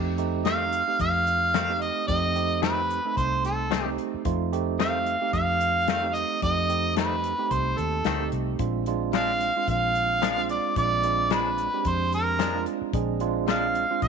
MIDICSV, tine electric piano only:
0, 0, Header, 1, 2, 480
1, 0, Start_track
1, 0, Tempo, 542986
1, 1841, Time_signature, 4, 2, 24, 8
1, 12447, End_track
2, 0, Start_track
2, 0, Title_t, "Tine electric piano"
2, 0, Program_c, 0, 4
2, 0, Note_on_c, 0, 57, 76
2, 0, Note_on_c, 0, 60, 75
2, 0, Note_on_c, 0, 63, 71
2, 0, Note_on_c, 0, 67, 90
2, 143, Note_off_c, 0, 60, 0
2, 143, Note_off_c, 0, 67, 0
2, 144, Note_off_c, 0, 57, 0
2, 144, Note_off_c, 0, 63, 0
2, 157, Note_on_c, 0, 57, 80
2, 161, Note_on_c, 0, 63, 76
2, 161, Note_on_c, 0, 67, 81
2, 162, Note_on_c, 0, 60, 70
2, 719, Note_off_c, 0, 57, 0
2, 721, Note_off_c, 0, 63, 0
2, 721, Note_off_c, 0, 67, 0
2, 722, Note_off_c, 0, 60, 0
2, 775, Note_on_c, 0, 60, 61
2, 776, Note_on_c, 0, 67, 76
2, 777, Note_on_c, 0, 57, 63
2, 777, Note_on_c, 0, 63, 63
2, 1430, Note_off_c, 0, 60, 0
2, 1430, Note_off_c, 0, 67, 0
2, 1431, Note_off_c, 0, 57, 0
2, 1431, Note_off_c, 0, 63, 0
2, 1496, Note_on_c, 0, 57, 72
2, 1499, Note_on_c, 0, 60, 67
2, 1499, Note_on_c, 0, 63, 67
2, 1501, Note_on_c, 0, 67, 82
2, 1816, Note_off_c, 0, 57, 0
2, 1818, Note_off_c, 0, 60, 0
2, 1818, Note_off_c, 0, 63, 0
2, 1819, Note_off_c, 0, 67, 0
2, 1845, Note_on_c, 0, 57, 65
2, 1845, Note_on_c, 0, 60, 67
2, 1846, Note_on_c, 0, 63, 62
2, 1847, Note_on_c, 0, 67, 77
2, 2066, Note_off_c, 0, 57, 0
2, 2066, Note_off_c, 0, 60, 0
2, 2066, Note_off_c, 0, 63, 0
2, 2067, Note_off_c, 0, 67, 0
2, 2083, Note_on_c, 0, 57, 61
2, 2083, Note_on_c, 0, 60, 67
2, 2085, Note_on_c, 0, 63, 61
2, 2085, Note_on_c, 0, 67, 80
2, 2640, Note_off_c, 0, 57, 0
2, 2641, Note_off_c, 0, 60, 0
2, 2641, Note_off_c, 0, 67, 0
2, 2642, Note_off_c, 0, 63, 0
2, 2697, Note_on_c, 0, 57, 74
2, 2699, Note_on_c, 0, 60, 59
2, 2701, Note_on_c, 0, 69, 79
2, 2703, Note_on_c, 0, 63, 65
2, 3350, Note_off_c, 0, 57, 0
2, 3350, Note_off_c, 0, 60, 0
2, 3351, Note_off_c, 0, 69, 0
2, 3353, Note_off_c, 0, 63, 0
2, 3405, Note_on_c, 0, 60, 74
2, 3406, Note_on_c, 0, 57, 74
2, 3407, Note_on_c, 0, 67, 76
2, 3408, Note_on_c, 0, 63, 70
2, 3729, Note_off_c, 0, 57, 0
2, 3729, Note_off_c, 0, 60, 0
2, 3730, Note_off_c, 0, 63, 0
2, 3730, Note_off_c, 0, 67, 0
2, 3757, Note_on_c, 0, 57, 88
2, 3758, Note_on_c, 0, 60, 68
2, 3761, Note_on_c, 0, 63, 68
2, 3762, Note_on_c, 0, 65, 94
2, 3980, Note_off_c, 0, 57, 0
2, 3981, Note_off_c, 0, 60, 0
2, 3982, Note_off_c, 0, 63, 0
2, 3983, Note_off_c, 0, 65, 0
2, 3999, Note_on_c, 0, 57, 88
2, 4001, Note_on_c, 0, 63, 71
2, 4002, Note_on_c, 0, 60, 73
2, 4003, Note_on_c, 0, 67, 94
2, 4557, Note_off_c, 0, 57, 0
2, 4559, Note_off_c, 0, 60, 0
2, 4559, Note_off_c, 0, 63, 0
2, 4560, Note_off_c, 0, 67, 0
2, 4610, Note_on_c, 0, 60, 66
2, 4611, Note_on_c, 0, 57, 68
2, 4613, Note_on_c, 0, 67, 76
2, 4615, Note_on_c, 0, 63, 66
2, 5266, Note_off_c, 0, 57, 0
2, 5266, Note_off_c, 0, 60, 0
2, 5267, Note_off_c, 0, 67, 0
2, 5268, Note_off_c, 0, 63, 0
2, 5324, Note_on_c, 0, 57, 75
2, 5324, Note_on_c, 0, 63, 74
2, 5325, Note_on_c, 0, 60, 65
2, 5328, Note_on_c, 0, 67, 78
2, 5648, Note_off_c, 0, 57, 0
2, 5648, Note_off_c, 0, 63, 0
2, 5649, Note_off_c, 0, 60, 0
2, 5650, Note_off_c, 0, 67, 0
2, 5678, Note_on_c, 0, 60, 61
2, 5681, Note_on_c, 0, 57, 69
2, 5681, Note_on_c, 0, 67, 75
2, 5683, Note_on_c, 0, 63, 61
2, 5900, Note_off_c, 0, 60, 0
2, 5902, Note_off_c, 0, 57, 0
2, 5902, Note_off_c, 0, 67, 0
2, 5903, Note_off_c, 0, 63, 0
2, 5913, Note_on_c, 0, 60, 61
2, 5919, Note_on_c, 0, 57, 64
2, 5919, Note_on_c, 0, 63, 61
2, 5920, Note_on_c, 0, 67, 74
2, 6474, Note_off_c, 0, 60, 0
2, 6477, Note_off_c, 0, 57, 0
2, 6477, Note_off_c, 0, 63, 0
2, 6478, Note_off_c, 0, 67, 0
2, 6527, Note_on_c, 0, 63, 65
2, 6528, Note_on_c, 0, 60, 60
2, 6532, Note_on_c, 0, 57, 69
2, 6533, Note_on_c, 0, 67, 74
2, 7184, Note_off_c, 0, 60, 0
2, 7184, Note_off_c, 0, 63, 0
2, 7186, Note_off_c, 0, 57, 0
2, 7187, Note_off_c, 0, 67, 0
2, 7254, Note_on_c, 0, 60, 64
2, 7255, Note_on_c, 0, 57, 69
2, 7255, Note_on_c, 0, 67, 82
2, 7257, Note_on_c, 0, 63, 64
2, 7573, Note_off_c, 0, 57, 0
2, 7573, Note_off_c, 0, 60, 0
2, 7573, Note_off_c, 0, 67, 0
2, 7574, Note_off_c, 0, 63, 0
2, 7596, Note_on_c, 0, 56, 77
2, 7596, Note_on_c, 0, 60, 71
2, 7596, Note_on_c, 0, 65, 84
2, 7597, Note_on_c, 0, 62, 73
2, 7819, Note_off_c, 0, 56, 0
2, 7819, Note_off_c, 0, 60, 0
2, 7820, Note_off_c, 0, 62, 0
2, 7820, Note_off_c, 0, 65, 0
2, 7843, Note_on_c, 0, 62, 70
2, 7844, Note_on_c, 0, 56, 86
2, 7844, Note_on_c, 0, 60, 70
2, 7846, Note_on_c, 0, 65, 85
2, 8400, Note_off_c, 0, 56, 0
2, 8400, Note_off_c, 0, 60, 0
2, 8400, Note_off_c, 0, 62, 0
2, 8401, Note_off_c, 0, 65, 0
2, 8458, Note_on_c, 0, 56, 66
2, 8459, Note_on_c, 0, 65, 79
2, 8460, Note_on_c, 0, 60, 64
2, 8462, Note_on_c, 0, 62, 61
2, 9110, Note_off_c, 0, 56, 0
2, 9110, Note_off_c, 0, 65, 0
2, 9111, Note_off_c, 0, 60, 0
2, 9112, Note_off_c, 0, 62, 0
2, 9170, Note_on_c, 0, 60, 67
2, 9170, Note_on_c, 0, 65, 85
2, 9172, Note_on_c, 0, 56, 81
2, 9174, Note_on_c, 0, 62, 69
2, 9491, Note_off_c, 0, 60, 0
2, 9491, Note_off_c, 0, 65, 0
2, 9493, Note_off_c, 0, 56, 0
2, 9493, Note_off_c, 0, 62, 0
2, 9522, Note_on_c, 0, 56, 70
2, 9522, Note_on_c, 0, 60, 59
2, 9523, Note_on_c, 0, 62, 60
2, 9523, Note_on_c, 0, 65, 73
2, 9743, Note_off_c, 0, 56, 0
2, 9743, Note_off_c, 0, 60, 0
2, 9743, Note_off_c, 0, 62, 0
2, 9743, Note_off_c, 0, 65, 0
2, 9758, Note_on_c, 0, 56, 67
2, 9761, Note_on_c, 0, 62, 67
2, 9761, Note_on_c, 0, 65, 74
2, 9762, Note_on_c, 0, 60, 61
2, 10318, Note_off_c, 0, 56, 0
2, 10319, Note_off_c, 0, 62, 0
2, 10319, Note_off_c, 0, 65, 0
2, 10320, Note_off_c, 0, 60, 0
2, 10374, Note_on_c, 0, 60, 63
2, 10377, Note_on_c, 0, 56, 65
2, 10380, Note_on_c, 0, 62, 66
2, 10380, Note_on_c, 0, 67, 76
2, 11028, Note_off_c, 0, 60, 0
2, 11030, Note_off_c, 0, 56, 0
2, 11031, Note_off_c, 0, 62, 0
2, 11032, Note_off_c, 0, 67, 0
2, 11092, Note_on_c, 0, 60, 65
2, 11093, Note_on_c, 0, 62, 70
2, 11094, Note_on_c, 0, 56, 77
2, 11096, Note_on_c, 0, 65, 85
2, 11413, Note_off_c, 0, 60, 0
2, 11413, Note_off_c, 0, 62, 0
2, 11414, Note_off_c, 0, 56, 0
2, 11415, Note_off_c, 0, 65, 0
2, 11438, Note_on_c, 0, 56, 86
2, 11438, Note_on_c, 0, 60, 72
2, 11441, Note_on_c, 0, 62, 77
2, 11441, Note_on_c, 0, 68, 86
2, 11661, Note_off_c, 0, 56, 0
2, 11661, Note_off_c, 0, 60, 0
2, 11663, Note_off_c, 0, 62, 0
2, 11663, Note_off_c, 0, 68, 0
2, 11675, Note_on_c, 0, 60, 77
2, 11676, Note_on_c, 0, 56, 84
2, 11678, Note_on_c, 0, 65, 96
2, 11680, Note_on_c, 0, 62, 75
2, 12237, Note_off_c, 0, 56, 0
2, 12237, Note_off_c, 0, 60, 0
2, 12238, Note_off_c, 0, 65, 0
2, 12239, Note_off_c, 0, 62, 0
2, 12295, Note_on_c, 0, 62, 62
2, 12296, Note_on_c, 0, 56, 67
2, 12296, Note_on_c, 0, 65, 82
2, 12297, Note_on_c, 0, 60, 67
2, 12447, Note_off_c, 0, 56, 0
2, 12447, Note_off_c, 0, 60, 0
2, 12447, Note_off_c, 0, 62, 0
2, 12447, Note_off_c, 0, 65, 0
2, 12447, End_track
0, 0, End_of_file